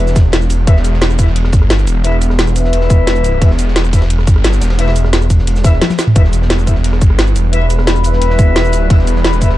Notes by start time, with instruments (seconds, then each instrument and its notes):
Already playing: brass ensemble E4 B4 E5
0.00 detuned saw bass E1
0.07 snare, shaker
0.15 kick, snare, closed hi-hat, ride, shaker
0.32 snare, closed hi-hat, ride
0.41 snare, shaker
0.50 closed hi-hat, ride, shaker
0.67 detuned saw bass E1, brass ensemble E4 B4 E5, kick, closed hi-hat, ride
0.76 snare
0.84 closed hi-hat, ride, shaker
0.94 snare
1.01 snare, closed hi-hat, ride
1.10 cross-stick, shaker
1.19 brass ensemble E4 B4 E5, kick, closed hi-hat, ride, shaker
1.27 snare
1.36 closed hi-hat, ride
1.44 cross-stick, snare
1.52 detuned saw bass G1, kick, closed hi-hat, ride, shaker
1.62 cross-stick
1.70 snare, closed hi-hat, ride
1.78 snare, shaker
1.87 detuned saw bass E1, closed hi-hat, ride, shaker
2.04 brass ensemble E4 B4 E5, closed hi-hat, ride
2.12 ride
2.21 closed hi-hat, ride, shaker
2.30 cross-stick, snare
2.39 snare, closed hi-hat, ride
2.47 cross-stick, shaker
2.56 brass ensemble E4 B4 E5, closed hi-hat, ride, shaker
2.64 snare
2.73 detuned saw bass E1, closed hi-hat, ride
2.81 snare
2.90 kick, closed hi-hat, ride, shaker
3.07 snare, closed hi-hat, ride
3.16 shaker
3.24 closed hi-hat, ride, shaker
3.42 detuned saw bass E1, brass ensemble E4 B4 E5, kick, closed hi-hat, ride
3.51 snare
3.59 closed hi-hat, ride, shaker
3.68 snare
3.76 snare, closed hi-hat, ride
3.85 cross-stick, shaker
3.93 brass ensemble E4 B4 E5, kick, snare, closed hi-hat, ride, shaker
4.02 snare, ride
4.10 closed hi-hat, ride
4.19 cross-stick, snare
4.27 detuned saw bass G1, kick, closed hi-hat, ride, shaker
4.36 cross-stick
4.44 snare, closed hi-hat, ride
4.53 snare, shaker
4.61 detuned saw bass E1, snare, closed hi-hat, ride, shaker
4.70 snare, ride
4.79 brass ensemble E4 B4 E5, snare, closed hi-hat, ride
4.88 snare, ride
4.96 closed hi-hat, ride, shaker
5.04 cross-stick, snare
5.13 snare, closed hi-hat, ride
5.22 cross-stick, shaker
5.30 kick, closed hi-hat, ride, shaker
5.39 snare
5.47 detuned saw bass E1, closed hi-hat, ride
5.56 snare, shaker
5.64 brass ensemble E4 B4 E5, kick, snare, closed hi-hat, ride, shaker
5.73 snare
5.81 snare, closed hi-hat, high tom, ride
5.90 snare, high tom, ride, shaker
5.98 snare, closed hi-hat, shaker
6.07 mid tom, ride
6.15 detuned saw bass E1, analog synth pad G3 E4 B4, brass ensemble E4 B4 E5, kick, closed hi-hat, ride
6.24 snare
6.33 closed hi-hat, ride, shaker
6.42 snare
6.50 snare, closed hi-hat, ride
6.59 cross-stick, shaker
6.67 brass ensemble E4 B4 E5, kick, closed hi-hat, ride, shaker
6.75 snare
6.84 closed hi-hat, ride
6.92 cross-stick, snare
7.01 detuned saw bass G1, kick, closed hi-hat, ride, shaker
7.10 cross-stick
7.19 snare, closed hi-hat, ride
7.27 snare, shaker
7.36 detuned saw bass E1, closed hi-hat, ride, shaker
7.53 brass ensemble E4 B4 E5, closed hi-hat, ride
7.61 ride
7.70 closed hi-hat, ride, shaker
7.78 cross-stick, snare
7.87 snare, closed hi-hat, ride
7.96 cross-stick, shaker
8.04 brass ensemble E4 B4 E5, closed hi-hat, ride, shaker
8.13 snare
8.22 detuned saw bass E1, closed hi-hat, ride
8.30 snare
8.39 kick, closed hi-hat, ride, shaker
8.56 snare, closed hi-hat, ride
8.64 shaker
8.70 detuned saw bass D#1, closed hi-hat, ride, shaker
8.90 detuned saw bass E1, brass ensemble E4 B4 E5, kick, closed hi-hat, ride
8.99 snare
9.07 closed hi-hat, ride, shaker
9.16 snare
9.24 snare, closed hi-hat, ride
9.33 cross-stick, shaker
9.41 brass ensemble E4 B4 E5, kick, closed hi-hat, ride, shaker
9.50 snare